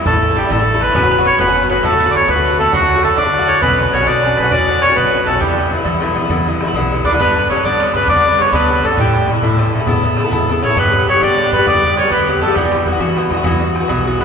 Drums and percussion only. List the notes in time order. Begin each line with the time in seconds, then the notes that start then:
0.06 bodhran
0.22 bodhran
0.50 bodhran
0.81 bodhran
0.95 bodhran
1.12 bodhran
1.26 bodhran
1.39 bodhran
1.56 bodhran
1.83 bodhran
2.15 bodhran
2.28 bodhran
2.59 bodhran
2.73 bodhran
2.89 bodhran
3.03 bodhran
3.18 bodhran
3.34 bodhran
3.62 bodhran
3.79 bodhran
4.07 bodhran
4.23 bodhran
4.37 bodhran
4.51 bodhran
4.68 bodhran
4.82 bodhran
4.96 bodhran
5.14 bodhran
5.28 bodhran
5.41 bodhran
5.58 bodhran
5.85 bodhran
6.02 bodhran
6.16 bodhran
6.30 bodhran
6.47 bodhran
6.61 bodhran
6.74 bodhran
7.05 bodhran
7.19 bodhran
7.35 bodhran
7.63 bodhran
7.80 bodhran
7.94 bodhran
8.08 bodhran
8.25 bodhran
8.39 bodhran
8.53 bodhran
8.70 bodhran
8.84 bodhran
8.97 bodhran
9.14 bodhran
9.28 bodhran
9.42 bodhran
9.59 bodhran
9.73 bodhran
9.86 bodhran
10.03 bodhran
10.17 bodhran
10.32 bodhran
10.49 bodhran
10.63 bodhran
10.77 bodhran
10.93 bodhran
11.21 bodhran
11.38 bodhran
11.52 bodhran
11.67 bodhran
11.83 bodhran
11.97 bodhran
12.11 bodhran
12.28 bodhran
12.42 bodhran
12.56 bodhran
12.72 bodhran
13.00 bodhran
13.17 bodhran
13.30 bodhran
13.44 bodhran
13.61 bodhran
13.76 bodhran
13.90 bodhran
14.07 bodhran
14.21 bodhran